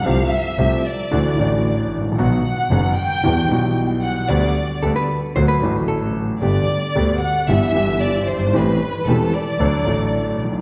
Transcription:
<<
  \new Staff \with { instrumentName = "Violin section" } { \time 4/4 \key g \major \tempo 4 = 113 f''8 e''4 d''2 r8 | fis''4. g''4. r8 fis''8 | d''4 r2. | d''4. fis''8 e''4 d''8 c''8 |
b'4 a'8 d''2 r8 | }
  \new Staff \with { instrumentName = "Hollow-body jazz guitar" } { \time 4/4 \key g \major r1 | r1 | r4 a'16 b'8. c''16 b'8. a'8. r16 | r1 |
r1 | }
  \new Staff \with { instrumentName = "Grand piano" } { \clef bass \time 4/4 \key g \major << { <c, c f a c' g'>8 r8 <c, c f a c' g'>8 r8 <d, d e a d' fis'>8 <a,, a, e a d' fis'>4. | <b,, b, dis fis b fis'>8 r8 <fis,, fis, dis fis b fis'>8 r8 <e, e g b fis'>8 <b,, b, e g b fis'>4. | <d, d g b g'>8 r8 <d, d g b g'>8 r8 <d, d fis a fis'>8 <a,, a, d fis a fis'>4. | <g,, g, d g b g'>8 r8 <d, d g b g'>8 r8 <g,, g, e g b g'>8 <g,, g, e g b g'>4. |
<a,, a, e a c' g'>8 r8 <e,, e, e a c' g'>8 r8 <d, d fis a d' a'>8 <a,, a, fis a d' a'>4. | } \\ { r2. r8 r32 aes,,32 a,,32 bes,,32 | r1 | r1 | r2. r8 r32 fis,,32 g,,32 aes,,32 |
r2. r8 r32 bes,,32 b,,32 r32 | } >> }
  \new Staff \with { instrumentName = "Double bass" } { \clef bass \time 4/4 \key g \major c,8 r8 c,8 r8 d,8 a,,4 a,,8 | b,,8 r8 fis,,8 r8 e,8 b,,4. | d,8 r8 d,8 r8 d,8 a,,4. | g,,8 r8 d,8 r8 g,,8 g,,4 g,,8 |
a,,8 r8 e,,8 r8 d,8 a,,4 b,,8 | }
>>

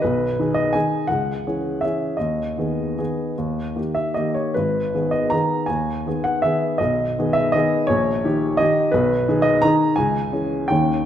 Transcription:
<<
  \new Staff \with { instrumentName = "Upright piano" } { \time 3/4 \key gis \minor \tempo 4 = 163 b'4. dis''8 gis''4 | fis''2 e''4 | dis''2.~ | dis''4. e''8 dis''8 cis''8 |
b'4. dis''8 ais''4 | gis''4. fis''8 e''4 | dis''4. e''8 dis''4 | cis''2 dis''4 |
b'4. dis''8 ais''4 | gis''2 g''4 | }
  \new Staff \with { instrumentName = "Upright piano" } { \time 3/4 \key gis \minor b,,4 <dis dis' gis'>4 <dis dis' gis'>4 | cis,4 <e cis' gis'>4 <e cis' gis'>4 | dis,4 <dis b gis'>4 <dis b gis'>4 | dis,4 <dis ais g'>4 <dis ais g'>4 |
gis,,4 <dis b gis'>4 <dis b gis'>4 | dis,4 <dis b gis'>4 <dis b gis'>4 | b,,4 <dis b gis'>4 <dis b gis'>4 | ais,,4 <dis dis' g'>4 <dis dis' g'>4 |
b,,4 <dis dis' gis'>4 <dis dis' gis'>4 | cis,4 <e cis' gis'>4 <dis, dis cis' dis'>4 | }
>>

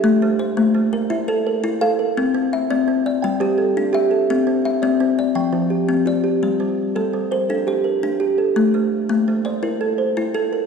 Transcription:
<<
  \new Staff \with { instrumentName = "Kalimba" } { \time 12/8 \key g \dorian \tempo 4. = 113 << { a'4 r8 bes4. e''4 bes'4. bes'8~ | bes'4 r8 d''4. g''8 g'8 a'4. a'8~ | a'4 r8 d''4. g''8 f'8 g'4. g'8~ | g'4 r8 a'4 c''8 a'4 bes'4. a'8~ |
a'4 r8 bes4 d''8 bes'4 c''4. bes'8 | } \\ { r8 a4 r8 a4 r8 a'4 r8 a'4 | r8 c'4 r8 c'4 r8 g4 r8 g'4 | r8 c'4 r8 c'4 r8 f4 r8 f'4 | r8 g4 r8 g4 r8 g'4 r8 g'4 |
r8 a4 r8 a4 r8 a'4 r8 a'4 | } >> }
  \new Staff \with { instrumentName = "Kalimba" } { \time 12/8 \key g \dorian << { e''8 r8 c''4. bes'4 a'4. f''4~ | f''8 r8 e''4. d''4 g'4. e''4~ | e''8 r8 e''4. d''4 r4. d''4~ | d''8 r2 bes'4 c''4. r4 |
r2 r8 c''4. r4 a'4 | } \\ { a4 r8 a4 r8 e'4 r8 e'4 r8 | c'4 r8 c'4 r8 g4 r8 d'4 r8 | c'4 r8 c'4 r8 f4 r8 c'4 r8 | g4 r8 g4 r8 d'4 r8 d'4 r8 |
a4 r8 a4 r8 e'4 r8 e'4 r8 | } >> }
>>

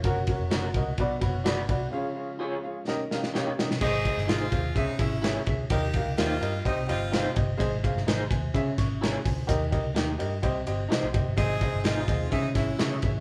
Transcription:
<<
  \new Staff \with { instrumentName = "Upright piano" } { \time 4/4 \key dis \minor \tempo 4 = 127 << { r1 | r1 | \key aes \major r1 | r1 |
r4 bes''8 <c'' aes''>4 <fes'' des'''>8 <des'' bes''>8 <c'' aes''>8~ | <c'' aes''>8 r2. r8 | r1 | } \\ { <fis' ais' cis''>8 <fis' ais' cis''>8 <fis' ais' cis''>8 <fis' ais' dis''>8 <fis' b' d''>8 <fis' b' cis''>8 <fis' b' d''>8 <fis' b' d''>8 | <eis' gis' cis''>8 <eis' gis' cis''>8 <eis' gis' cis''>8 <eis' gis' cis''>8 <cis' dis' g' ais' dis''>8 <cis' dis' g' ais' eis''>8 <cis' dis' g' ais' eis''>8 <cis' dis' g' ais' dis''>8 | <aes' c'' ees''>8 <aes' c'' ees''>8 <aes' c'' ees''>8 <aes' c'' f''>8 <aes' des'' fes''>8 <aes' des'' fes''>8 <aes' des'' fes''>8 <aes' des'' fes''>8 | <g' bes' ees''>8 <g' bes' f''>8 <g' bes' c''>8 <g' bes' ees''>8 <g' c'' ees''>8 <g' c'' ees''>8 <g' c'' f''>8 <g' c'' ees''>8 |
<aes' c'' ees''>8 <aes' c'' f''>8 r4 <aes' des'' fes''>8 r4. | <g' bes' ees''>8 <g' bes' ees''>8 <g' bes' ees''>8 <g' bes' ees''>8 <g' c'' ees''>8 <g' c'' ees''>8 <g' c'' ees''>8 <g' c'' ees''>8 | <aes' c'' ees''>8 <aes' c'' ees''>8 <aes' c'' ees''>8 <aes' c'' ees''>8 <aes' des'' fes''>8 <aes' des'' fes''>8 <aes' des'' fes''>8 <aes' des'' fes''>8 | } >> }
  \new Staff \with { instrumentName = "Upright piano" } { \clef bass \time 4/4 \key dis \minor r2 b,4. r8 | cis4. r8 dis4. r8 | \key aes \major aes,4. r8 des4. r8 | ees4. r8 c4. r8 |
aes,4. r8 des4. r8 | ees4. r8 c4. r8 | aes,4. r8 des4. r8 | }
  \new Staff \with { instrumentName = "Clean electric guitar" } { \time 4/4 \key dis \minor r4 <cis' fis' ais'>8 r4. <d' fis' b'>8 r8 | r4 <eis' gis' cis''>8 r4. <dis' g' cis''>8 r8 | \key aes \major r4 <ees' aes' c''>8 r4. <fes' aes' des''>8 r8 | r4 <bes ees' g'>8 r4. <ees' g' c''>8 r8 |
r4 <ees' aes' c''>8 r4. <fes' aes' des''>8 r8 | r4 <bes ees' g'>8 r4. <ees' g' c''>8 r8 | r4 <ees' aes' c''>8 r4. <fes' aes' des''>8 r8 | }
  \new Staff \with { instrumentName = "Saxophone section" } { \time 4/4 \key dis \minor r1 | r1 | \key aes \major <c' ees' aes'>4 <aes c' f'>4 <aes c' ees'>8 <aes des' fes'>4 r8 | <bes ees' g'>4 <g bes f'>4 <g c' ees'>8 <g c' f'>4 r8 |
r1 | r1 | <c' ees' aes'>4 <aes c' f'>4 <aes c' ees'>8 <aes des' fes'>4 r8 | }
  \new Staff \with { instrumentName = "Tonewheel organ" } { \time 4/4 \key dis \minor cis'2 d'2 | cis'1 | \key aes \major r1 | r1 |
r1 | r1 | c'2 des'2 | }
  \new Staff \with { instrumentName = "Tonewheel organ" } { \time 4/4 \key dis \minor << { <fis fis'>1 | <eis eis'>2 <g dis'>2 | \key aes \major r1 | r1 |
r1 | r1 | <ees ees'>2 <fes fes'>2 | } \\ { ais2 b2 | gis2 ais2 | r1 | r1 |
r1 | r1 | aes2 aes2 | } >> }
  \new Staff \with { instrumentName = "Picked electric bass" } { \clef bass \time 4/4 \key dis \minor fis,,8. eis,,16 fis,,8 cis,8 b,,8 fis,,4 bis,,8 | r1 | \key aes \major aes,,8. g,,16 aes,,8 ees,8 des,16 r16 aes,,4 d,8 | ees,8. des,16 ees,8 g,8 c,8 g,,4 g,,8 |
aes,,8. g,,16 aes,,8 ees,8 des8 aes,,4 d,8 | ees,8. des,16 ees,8 g,8 c,8 g,,8 r16 bes,,16 ges,,16 g,,16 | aes,,8. g,,16 aes,,8 ees,8 des8 aes,,8 des8 aes,,8 | }
  \new DrumStaff \with { instrumentName = "Drums" } \drummode { \time 4/4 <bd cymr>8 <bd cymr>8 <cymr sn>8 <bd cymr>8 <bd cymr>8 <bd cymr>8 <cymr sn>8 <bd cymr>8 | r4 r4 sn8 sn16 sn16 sn8 sn16 sn16 | <cymc bd>8 <bd cymr>16 sn16 <cymr sn>8 <bd cymr>8 <bd cymr>8 <bd cymr>8 <cymr sn>8 <bd cymr>8 | <bd cymr>8 <bd cymr>8 <cymr sn>8 cymr8 <bd cymr>8 <cymr sn>8 <cymr sn>8 <bd cymr>8 |
<bd cymr>8 <bd cymr>16 sn16 <cymr sn>8 <bd cymr>8 <bd cymr>8 <bd cymr sn>8 <cymr sn>8 <hho bd cymr>8 | <hhp bd cymr>8 <bd cymr>8 <cymr sn>8 cymr8 <bd cymr>8 cymr8 <cymr sn>8 <bd cymr>8 | <bd cymr>8 <bd cymr>8 <cymr sn>8 <bd cymr>8 <bd cymr>8 <bd cymr sn>8 <cymr sn>8 <bd cymr>8 | }
>>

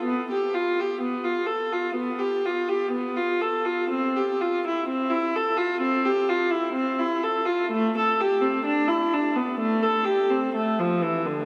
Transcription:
\new Staff \with { instrumentName = "Viola" } { \time 4/4 \key c \major \tempo 4 = 63 b16 g'16 f'16 g'16 b16 f'16 a'16 f'16 b16 g'16 f'16 g'16 b16 f'16 a'16 f'16 | c'16 g'16 f'16 e'16 c'16 e'16 a'16 f'16 c'16 g'16 f'16 e'16 c'16 e'16 a'16 f'16 | a16 a'16 g'16 c'16 d'16 e'16 d'16 b16 a16 a'16 g'16 c'16 a16 f16 e16 d16 | }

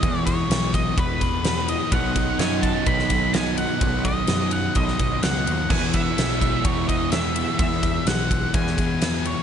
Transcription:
<<
  \new Staff \with { instrumentName = "Lead electric guitar" } { \time 4/4 \key e \major \tempo 4 = 127 dis''8 cis''4 dis''8 b'4. dis''8 | fis''4 gis''8 a''8 b''4 gis''8 fis''8~ | fis''8 dis''4 fis''8 dis''4 fis''4 | gis''8 e''4. cis''8 dis''8 e''4 |
e''4 fis''4 gis''4. cis''8 | }
  \new Staff \with { instrumentName = "Overdriven electric guitar" } { \clef bass \time 4/4 \key e \major <e gis b e'>1 | <b, dis fis b dis'>1~ | <b, dis fis b dis'>1 | <e gis b e'>1~ |
<e gis b e'>1 | }
  \new Staff \with { instrumentName = "Distorted electric guitar" } { \clef bass \time 4/4 \key e \major <e, b, e>4 <e, b, e>4. <b, e>8 <e, b, e>8 <b, e>8 | <b, fis b>4 <b, fis b>4. <fis b>8 <b, fis b>8 <fis b>8 | <b, fis b>4 <b, fis b>4. <fis b>8 <b, fis b>8 <fis b>8 | <e, b, e>4 <e, b, e>4. <b, e>8 <e, b, e>8 <b, e>8 |
<e, b, e>4 <e, b, e>4. <b, e>8 <e, b, e>8 <b, e>8 | }
  \new Staff \with { instrumentName = "Picked electric bass" } { \clef bass \time 4/4 \key e \major e,4 b,,4 e,2 | b,,4 fis,4 b,,2 | b,,4 fis,4 b,,8 b,,8 cis,8 dis,8 | e,4 b,,4 e,2 |
e,4 b,,4 e,2 | }
  \new DrumStaff \with { instrumentName = "Drums" } \drummode { \time 4/4 <bd cymr>8 <bd cymr>8 <cymr sn>8 <bd cymr>8 <bd cymr>8 <bd cymr>8 <cymr sn>8 cymr8 | <bd cymr>8 <bd cymr>8 <cymr sn>8 <bd cymr>8 <bd cymr>16 sn16 <bd cymr>8 <cymr sn>8 cymr8 | <bd cymr>8 <bd cymr>8 <cymr sn>8 cymr8 <bd cymr>16 sn16 <bd cymr>8 <cymr sn>8 cymr8 | <cymc bd>8 <bd cymr>8 <cymr sn>8 <bd cymr>8 <bd cymr>8 <bd cymr>8 <cymr sn>8 cymr8 |
<bd cymr>8 <bd cymr>8 <cymr sn>8 <bd cymr>8 <bd cymr>16 sn16 <bd cymr>8 <cymr sn>8 cymr8 | }
>>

